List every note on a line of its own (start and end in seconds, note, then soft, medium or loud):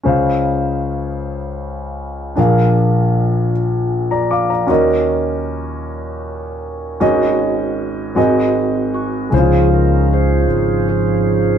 0.03 2.33 C#2 soft
0.03 2.33 C#3 soft
0.03 2.32 C#4 soft
0.03 2.33 G#4 soft
0.03 2.33 C5 soft
0.03 2.34 F5 medium
2.36 4.65 A#1 soft
2.36 4.65 A#2 soft
2.36 4.64 D4 soft
2.36 4.65 G#4 soft
2.36 4.66 A#4 soft
2.36 3.52 F5 medium
4.11 4.30 D5 soft
4.11 4.29 A#5 soft
4.31 4.49 F5 soft
4.31 4.49 D6 soft
4.50 4.87 D5 soft
4.50 4.87 A#5 soft
4.67 6.97 D#2 medium
4.67 6.97 D#3 soft
4.67 6.96 C#4 medium
4.67 6.96 F#4 soft
4.67 6.97 A#4 soft
4.67 6.98 D#5 medium
7.00 8.13 G#1 soft
7.00 8.13 G#2 medium
7.00 8.16 C#4 medium
7.00 8.14 F#4 soft
7.00 8.15 G#4 soft
7.00 8.15 D#5 medium
8.15 9.28 G#1 soft
8.15 9.28 G#2 medium
8.15 9.32 C4 soft
8.15 9.32 F#4 soft
8.15 9.33 G#4 soft
8.15 9.33 D#5 medium
8.94 9.34 F#4 medium
9.30 10.45 C#2 medium
9.30 10.44 C#3 soft
9.30 11.58 F3 soft
9.30 11.58 G#3 soft
9.30 11.58 C#4 soft
9.30 9.39 E4 soft
9.30 11.58 C5 medium
9.35 10.46 G#3 soft
9.35 11.58 C#4 soft
9.35 11.58 D#4 soft
9.35 10.12 F4 soft
9.35 9.70 G#4 medium
9.39 11.58 F4 soft
9.74 10.09 A#4 medium
10.13 10.88 F4 medium
10.13 10.89 G#4 soft
10.13 10.88 C5 medium
10.48 11.58 G#1 medium
10.89 11.58 F4 soft
10.89 11.58 G#4 medium
10.89 11.58 C5 soft